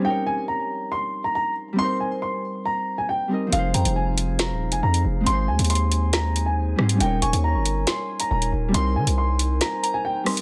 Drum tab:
HH |--------------------------------|--------------------------------|x---x-x-----x---x-----x---x-----|x-----xxxx--x---x---x---------x-|
SD |--------------------------------|--------------------------------|----------------o---------------|----------------o-----------r---|

HH |x---x-x-----x---x-----x---x-----|x-----x-----x---x---x-------o-x-|
SD |----------------o---------------|----------------o-----------r---|